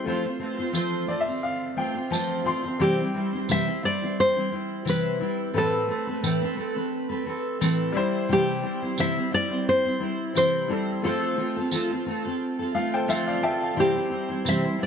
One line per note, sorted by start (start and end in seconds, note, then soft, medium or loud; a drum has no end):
0.00 2.76 A3 medium
0.00 2.43 C5 loud
0.06 0.25 F3 medium
0.06 0.25 A3 medium
0.06 0.25 C4 medium
0.06 2.77 F4 medium
0.06 0.24 F4 medium
0.06 0.23 C5 medium
0.06 2.78 C5 medium
0.24 0.39 C4 soft
0.24 0.39 F4 medium
0.24 0.40 C5 soft
0.39 0.59 A3 medium
0.39 0.59 C4 medium
0.39 0.58 F4 medium
0.39 0.57 C5 medium
0.58 0.72 C4 medium
0.58 0.73 F4 medium
0.58 0.73 C5 medium
0.73 1.08 F3 medium
0.73 1.06 A3 medium
0.73 1.06 C4 medium
0.73 1.07 F4 medium
0.73 1.08 C5 loud
0.73 tambourine medium
1.07 1.27 A3 medium
1.07 1.27 C4 medium
1.07 1.26 F4 medium
1.07 1.24 C5 medium
1.07 1.19 D5 medium
1.21 1.42 E5 medium
1.26 1.76 C4 soft
1.26 1.76 F4 medium
1.26 1.77 C5 medium
1.43 1.75 F5 medium
1.76 1.96 A3 medium
1.76 1.95 C4 medium
1.76 1.94 F4 medium
1.76 1.93 C5 medium
1.76 2.10 G5 medium
1.94 2.10 C4 soft
1.94 2.10 F4 medium
1.94 2.10 C5 medium
2.10 2.46 F3 loud
2.10 2.43 A3 medium
2.10 2.44 C4 medium
2.10 2.44 F4 medium
2.10 2.45 C5 loud
2.10 2.44 A5 medium
2.10 tambourine medium
2.44 2.64 A3 medium
2.44 2.64 C4 medium
2.44 2.63 F4 medium
2.44 2.62 C5 medium
2.44 2.78 C6 medium
2.63 2.79 C4 soft
2.63 2.80 F4 soft
2.63 2.79 C5 medium
2.79 2.99 C3 medium
2.79 2.99 E3 medium
2.79 5.51 G3 medium
2.79 2.99 G3 medium
2.79 2.98 C4 medium
2.79 5.52 C4 medium
2.79 2.97 E4 medium
2.79 5.51 E4 medium
2.79 3.52 G4 loud
2.79 2.97 C5 medium
2.98 3.13 G3 soft
2.98 3.13 C4 soft
2.98 3.14 E4 soft
2.98 3.14 C5 soft
3.14 3.33 G3 medium
3.14 3.33 C4 medium
3.14 3.33 E4 medium
3.14 3.32 C5 medium
3.33 3.48 G3 soft
3.33 3.48 C4 soft
3.33 3.48 E4 soft
3.33 3.49 C5 medium
3.48 3.68 C3 medium
3.48 3.68 E3 medium
3.48 3.67 G3 medium
3.48 3.67 C4 medium
3.48 3.66 E4 medium
3.48 3.66 C5 medium
3.48 3.85 E5 loud
3.48 tambourine medium
3.67 3.82 G3 soft
3.67 3.83 C4 soft
3.67 3.83 E4 soft
3.67 3.83 C5 medium
3.83 4.02 G3 medium
3.83 4.02 C4 medium
3.83 4.01 E4 medium
3.83 4.01 C5 medium
3.83 4.20 D5 loud
4.02 4.37 G3 soft
4.02 4.36 C4 soft
4.02 4.35 E4 medium
4.02 4.35 C5 soft
4.20 4.89 C5 loud
4.36 4.49 G3 soft
4.36 4.50 C4 soft
4.36 4.51 E4 soft
4.36 4.51 C5 medium
4.51 4.84 G3 medium
4.51 4.84 C4 medium
4.51 4.85 E4 medium
4.51 4.87 C5 medium
4.85 5.20 C3 medium
4.85 5.20 E3 medium
4.85 5.18 G3 medium
4.85 5.19 C4 medium
4.85 5.20 E4 medium
4.85 tambourine medium
4.89 5.59 B4 medium
5.20 5.53 G3 medium
5.20 5.53 C4 medium
5.20 5.54 E4 medium
5.53 5.89 A2 medium
5.53 5.89 E3 medium
5.53 5.87 A3 medium
5.53 7.91 A3 medium
5.53 5.88 C4 medium
5.53 7.92 C4 medium
5.53 5.88 A4 medium
5.53 5.89 B4 medium
5.58 6.90 A4 medium
5.58 7.92 B4 medium
5.88 6.08 A3 medium
5.88 6.07 C4 medium
5.88 6.06 A4 medium
5.88 6.06 B4 medium
6.07 6.22 A3 soft
6.07 6.22 C4 soft
6.07 6.22 A4 medium
6.07 6.22 B4 medium
6.22 6.42 A2 medium
6.22 6.42 E3 medium
6.22 6.42 A3 medium
6.22 6.41 C4 medium
6.22 6.41 A4 medium
6.22 6.40 B4 medium
6.22 tambourine medium
6.41 6.55 A3 soft
6.41 6.56 C4 medium
6.41 6.57 A4 medium
6.41 6.57 B4 medium
6.56 6.76 A3 medium
6.56 6.75 C4 medium
6.56 6.74 A4 medium
6.56 6.74 B4 medium
6.75 7.10 A3 medium
6.75 7.09 C4 medium
6.75 7.09 A4 medium
6.75 7.08 B4 medium
7.09 7.24 A3 soft
7.09 7.25 C4 medium
7.09 7.25 A4 soft
7.09 7.26 B4 medium
7.25 7.60 A3 medium
7.25 7.60 C4 medium
7.25 7.61 A4 medium
7.25 7.60 B4 medium
7.61 7.95 A2 medium
7.61 7.95 E3 medium
7.61 7.94 A3 loud
7.61 7.94 C4 loud
7.61 7.95 A4 loud
7.61 7.96 B4 medium
7.61 tambourine medium
7.92 10.64 G3 medium
7.92 8.28 G3 medium
7.92 8.28 C4 medium
7.92 10.65 E4 medium
7.92 8.29 E4 medium
7.96 8.29 C5 medium
7.96 10.66 C5 loud
8.29 8.63 C3 medium
8.29 8.63 E3 medium
8.29 8.61 G3 medium
8.29 8.62 C4 medium
8.29 8.62 E4 medium
8.29 8.63 C5 medium
8.33 8.96 G4 loud
8.62 8.82 G3 medium
8.62 8.82 C4 medium
8.62 8.81 E4 medium
8.62 8.81 C5 medium
8.82 8.96 G3 soft
8.82 8.97 C4 medium
8.82 8.97 E4 medium
8.82 8.97 C5 medium
8.97 9.16 C3 medium
8.97 9.17 E3 medium
8.97 9.17 G3 medium
8.97 9.16 C4 medium
8.97 9.15 E4 medium
8.97 9.15 C5 medium
8.97 9.34 E5 loud
8.97 tambourine medium
9.16 9.29 G3 soft
9.16 9.30 C4 medium
9.16 9.31 E4 soft
9.16 9.31 C5 medium
9.31 9.50 G3 medium
9.31 9.50 C4 medium
9.31 9.49 E4 medium
9.31 9.49 C5 medium
9.31 9.65 D5 loud
9.50 9.85 G3 soft
9.50 9.85 C4 soft
9.50 9.84 E4 soft
9.50 9.84 C5 medium
9.69 10.36 C5 loud
9.85 9.99 G3 soft
9.85 9.99 C4 medium
9.85 10.00 E4 soft
9.85 10.00 C5 medium
10.00 10.34 G3 medium
10.00 10.34 C4 medium
10.00 10.34 E4 medium
10.00 10.35 C5 medium
10.34 10.69 C3 medium
10.34 10.69 E3 medium
10.34 10.68 G3 medium
10.34 10.68 C4 medium
10.34 10.69 E4 medium
10.34 10.69 C5 medium
10.34 11.01 C5 medium
10.34 tambourine medium
10.68 11.03 G3 medium
10.68 11.03 C4 medium
10.68 11.04 E4 soft
10.68 11.04 E4 medium
10.68 11.04 A4 medium
10.68 11.04 C5 medium
11.02 11.38 F3 medium
11.02 13.73 A3 medium
11.02 11.36 A3 medium
11.02 11.37 C4 medium
11.02 13.74 F4 medium
11.02 11.37 F4 medium
11.02 11.38 A4 medium
11.02 12.37 A4 medium
11.02 12.73 C5 medium
11.37 11.56 A3 medium
11.37 11.57 C4 medium
11.37 11.57 F4 medium
11.37 11.55 A4 medium
11.56 11.71 C4 medium
11.56 11.71 F4 medium
11.56 11.72 A4 medium
11.71 11.91 F3 medium
11.71 11.91 A3 medium
11.71 11.91 C4 medium
11.71 11.91 F4 medium
11.71 11.89 A4 medium
11.71 tambourine medium
11.90 12.06 C4 soft
11.90 12.06 F4 medium
11.90 12.06 A4 medium
12.06 12.25 A3 medium
12.06 12.26 C4 medium
12.06 12.25 F4 medium
12.06 12.24 A4 medium
12.25 12.60 C4 medium
12.25 12.59 F4 medium
12.25 12.58 A4 medium
12.59 12.74 C4 medium
12.59 12.74 F4 soft
12.59 12.75 A4 medium
12.74 13.07 A3 medium
12.74 13.07 C4 medium
12.74 13.08 F4 medium
12.74 13.08 A4 medium
12.74 12.92 F5 medium
12.94 13.09 A4 medium
12.94 13.08 C5 medium
12.94 13.08 G5 medium
13.08 13.43 F3 medium
13.08 13.41 A3 loud
13.08 13.42 C4 medium
13.08 13.42 F4 medium
13.08 13.42 A4 medium
13.08 13.27 C5 medium
13.08 13.27 E5 medium
13.08 13.26 F5 medium
13.08 tambourine medium
13.27 13.43 D5 medium
13.27 13.42 F5 medium
13.42 13.77 A3 medium
13.42 13.76 C4 medium
13.42 13.77 F4 medium
13.42 13.77 A4 medium
13.42 13.62 E5 medium
13.42 13.61 G5 medium
13.42 13.60 A5 medium
13.62 13.95 F5 medium
13.62 13.95 A5 medium
13.75 13.96 C3 medium
13.75 13.96 E3 medium
13.75 14.87 G3 medium
13.75 13.95 G3 medium
13.75 13.94 C4 medium
13.75 13.94 E4 medium
13.75 14.87 E4 medium
13.75 13.93 C5 medium
13.79 14.50 G4 loud
13.79 14.87 C5 medium
13.94 14.08 G3 soft
13.94 14.08 C4 soft
13.94 14.09 E4 soft
13.94 14.10 C5 soft
14.09 14.30 G3 medium
14.09 14.29 C4 medium
14.09 14.28 E4 medium
14.09 14.27 C5 medium
14.29 14.44 G3 soft
14.29 14.44 C4 soft
14.29 14.44 E4 medium
14.29 14.44 C5 medium
14.45 14.64 C3 medium
14.45 14.64 E3 medium
14.45 14.63 G3 medium
14.45 14.63 C4 medium
14.45 14.62 E4 medium
14.45 14.62 C5 medium
14.45 tambourine medium
14.49 14.83 E5 medium
14.63 14.77 G3 soft
14.63 14.77 C4 soft
14.63 14.78 E4 soft
14.63 14.79 C5 medium
14.78 14.87 G3 medium
14.78 14.87 C4 medium
14.78 14.87 E4 medium
14.78 14.87 C5 medium
14.83 14.87 D5 medium